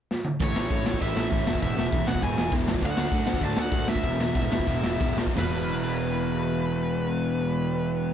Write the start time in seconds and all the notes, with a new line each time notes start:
0.11 snare
0.25 mid tom
0.40 A1 A2 E3 A3 C#4 E4 C#5, kick, ride
0.56 A1 A2 E3 A3 C#4 E4, snare
0.70 A1 A2 E3 A3 C#4 E4, kick, ride
0.86 A1 A2 E3 A3 C#4 E4, snare
0.94 kick
1.01 A1 A2 E3 A3 C#4 E4 E5, kick, ride
1.16 A1 A2 E3 A3 C#4 E4, snare
1.30 A1 A2 E3 A3 C#4 E4, kick, ride
1.46 E1 E2 B2 E3 G#3 B3 E4, snare
1.55 kick
1.61 E1 E2 B2 E3 G#3 B3 E4 E5, kick, ride
1.76 E1 E2 B2 E3 G#3 B3 E4, snare
1.91 E1 E2 B2 E3 G#3 B3 E4, kick, ride
2.07 E1 E2 B2 E3 G#3 B3 E4 F#5, snare
2.15 kick
2.22 E1 E2 B2 E3 G#3 B3 E4 G#5, kick, ride
2.37 E1 E2 B2 E3 G#3 B3 E4, snare
2.51 E1 E2 B2 E3 G#3 B3 E4, kick, ride
2.66 E2 B2 E3 G#3 B3 E4, snare
2.74 kick
2.81 D2 D3 A3 D4 F#4, kick, ride
2.86 F#5
2.97 D2 D3 A3 D4 F#4, snare
3.11 D2 D3 A3 D4 F#4, kick, ride
3.24 D2 D4, snare
3.28 D3 A3 D4 F#4
3.34 kick
3.41 D2 D3 A3 D4 F#4 A5, kick, ride
3.57 D2 D3 A3 D4 F#4, snare
3.61 F#5
3.72 D2 D3 A3 D4 F#4, kick, ride
3.88 D3 A3 D4 F#4 E5, snare
3.96 kick
4.03 E1 E2 B2 E3 G#3 B3 E4, kick, ride
4.19 E1 E2 B2 E3 G#3 B3 E4, snare
4.35 E1 E2 B2 E3 G#3 B3 E4, kick, ride
4.50 E1 E2 B2 E3 B3 E4, snare
4.55 E3 G#3
4.59 kick
4.67 E1 E2 B2 E3 G#3 B3 E4, kick, ride
4.83 E1 E2 B2 E3 G#3 B3 E4, snare
5.01 E1 E2 B2 E3 G#3 B3 E4, kick, ride
5.18 E2 B2 E3 G#3 B3 E4, snare
5.27 kick
5.34 E1 E2 B2 E3 G#3 B3 E4, snare, floor tom, crash
5.39 E3 B4